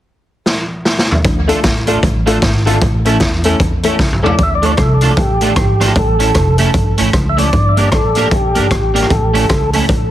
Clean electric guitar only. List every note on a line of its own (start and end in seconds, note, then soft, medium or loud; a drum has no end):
1.48 1.58 A3 medium
1.48 1.59 D4 medium
1.48 1.59 F4 medium
1.48 1.59 A4 medium
1.87 1.97 A3 medium
1.87 1.98 D4 medium
1.87 1.98 F4 medium
1.87 1.98 A4 medium
2.26 2.37 A3 medium
2.26 2.37 D4 medium
2.26 2.37 F4 medium
2.26 2.37 A4 medium
2.66 2.76 A3 medium
2.66 2.77 D4 medium
2.66 2.77 F4 loud
2.66 2.77 A4 loud
3.06 3.16 A3 medium
3.06 3.16 C#4 medium
3.06 3.16 E4 loud
3.06 3.16 A4 loud
3.44 3.55 A3 medium
3.44 3.55 C#4 medium
3.44 3.55 E4 medium
3.44 3.55 A4 medium
3.84 3.94 A3 medium
3.84 3.95 C#4 medium
3.84 3.95 E4 medium
3.84 3.95 A4 medium
4.23 4.33 A3 medium
4.23 4.33 C#4 medium
4.23 4.34 E4 medium
4.23 4.34 A4 medium
4.62 4.73 A3 medium
4.62 4.73 D4 medium
4.62 4.73 F4 medium
4.62 4.73 A4 medium
5.02 5.12 A3 medium
5.02 5.12 D4 medium
5.02 5.12 F4 medium
5.02 5.13 A4 loud
5.41 5.51 A3 medium
5.41 5.52 D4 medium
5.41 5.52 F4 medium
5.41 5.52 A4 medium
5.80 5.91 A3 medium
5.80 5.91 D4 medium
5.80 5.91 F4 medium
5.80 5.91 A4 loud
6.19 6.30 A3 medium
6.19 6.30 C#4 medium
6.19 6.30 E4 medium
6.19 6.30 A4 medium
6.36 muted clean electric guitar stroke medium
6.59 6.69 A3 medium
6.59 6.69 C#4 loud
6.59 6.70 E4 loud
6.59 6.70 A4 medium
6.98 7.08 A3 loud
6.98 7.09 C#4 medium
6.98 7.09 E4 loud
6.98 7.09 A4 medium
7.37 7.47 A3 medium
7.37 7.48 C#4 medium
7.37 7.48 E4 medium
7.37 7.48 A4 loud
7.77 7.87 A#3 medium
7.77 7.87 D4 medium
7.77 7.88 G4 medium
7.77 7.88 A#4 medium
7.92 muted clean electric guitar stroke soft
8.16 8.26 A#3 medium
8.16 8.27 D4 medium
8.16 8.27 G4 loud
8.16 8.27 A#4 loud
8.55 8.65 A#3 medium
8.55 8.66 D4 medium
8.55 8.66 G4 medium
8.55 8.66 A#4 medium
8.94 9.05 A#3 medium
8.94 9.05 D4 medium
8.94 9.05 G4 medium
8.94 9.05 A#4 medium
9.34 9.44 A3 medium
9.34 9.44 C#4 medium
9.34 9.45 E4 medium
9.34 9.45 A4 loud
9.73 9.84 A3 medium
9.73 9.84 C#4 medium
9.73 9.84 E4 medium
9.73 9.84 A4 medium